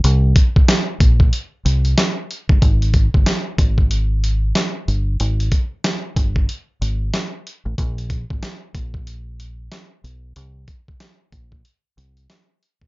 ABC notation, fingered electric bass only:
X:1
M:4/4
L:1/16
Q:"Swing 16ths" 1/4=93
K:Cphr
V:1 name="Fingered electric bass" clef=bass
C,,2 z4 B,,,2 z2 C,,2 z3 G,,, | A,,,3 G,,, z2 A,,,6 z2 G,,,2 | A,,,2 z4 G,,,2 z2 A,,,2 z3 =A,,, | B,,,3 A,,, z2 B,,,6 z2 _C,,2 |
C,,2 z4 B,,,2 z2 C,,2 z3 _C,, |]